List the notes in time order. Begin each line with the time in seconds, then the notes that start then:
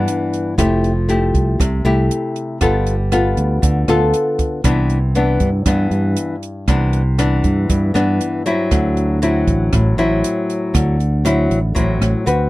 Already playing: G2 E3 B3 D4
0.08 closed hi-hat
0.33 closed hi-hat
0.58 F1 F3 A3 E4 G4, kick, cross-stick, closed hi-hat
0.84 closed hi-hat
1.09 A3 E4 G4, closed hi-hat
1.34 C2, kick, closed hi-hat
1.60 C2 C3, kick, cross-stick, closed hi-hat
1.85 C2 A3 E4 G4, closed hi-hat
2.11 closed hi-hat
2.36 closed hi-hat
2.61 G1 G3 B3 F4 A4, kick, cross-stick, closed hi-hat
2.87 closed hi-hat
3.12 B3 F4 A4, cross-stick, closed hi-hat
3.37 D2, closed hi-hat
3.62 D2 D3, kick, closed hi-hat
3.88 D2 B3 F4 A4, cross-stick, closed hi-hat
4.14 closed hi-hat
4.39 kick, closed hi-hat
4.64 C2 C3 E3 B3 D4, kick, cross-stick, closed hi-hat
4.90 closed hi-hat
5.15 E3 B3 D4, closed hi-hat
5.40 G2, kick, closed hi-hat
5.66 G2 E3 B3 D4, kick, cross-stick, closed hi-hat
5.91 G2, closed hi-hat
6.16 closed hi-hat
6.43 closed hi-hat
6.68 C2 C3 E3 B3 D4, kick, cross-stick, closed hi-hat
6.93 closed hi-hat
7.18 E3 B3 D4, cross-stick, closed hi-hat
7.44 G2, kick, closed hi-hat
7.69 G2, kick, closed hi-hat
7.94 G2 E3 B3 D4, cross-stick, closed hi-hat
8.21 closed hi-hat
8.46 F#3 C4 E4, closed hi-hat
8.71 D2 D3, kick, cross-stick, closed hi-hat
8.97 closed hi-hat
9.22 F#3 C4 E4, closed hi-hat
9.47 A1, kick, closed hi-hat
9.73 A1 A2, kick, cross-stick, closed hi-hat
9.97 A1 F#3 C4 E4, closed hi-hat
10.24 closed hi-hat
10.50 closed hi-hat
10.74 D2 D3, kick, cross-stick, closed hi-hat
11.00 closed hi-hat
11.25 F#3 C4 E4, cross-stick, closed hi-hat
11.50 A1, closed hi-hat
11.75 A1 A2 F#3 C4 E4, kick, closed hi-hat
12.02 A1, cross-stick, closed hi-hat
12.26 D2 C4 F#4 B4, closed hi-hat